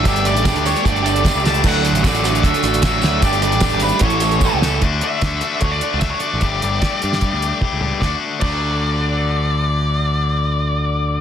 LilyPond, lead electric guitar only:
\new Staff \with { instrumentName = "Lead electric guitar" } { \time 4/4 \key d \major \tempo 4 = 150 e''8 d''8 d''8 cis''8 d''4. a''8 | fis''4 d''4 e''4 e''4 | d''8 d''4 b'8 cis''4. r8 | r8 e''4. cis''16 d''8. e''16 cis''16 d''8~ |
d''2. r4 | d''16 r8. d''2.~ | d''1 | }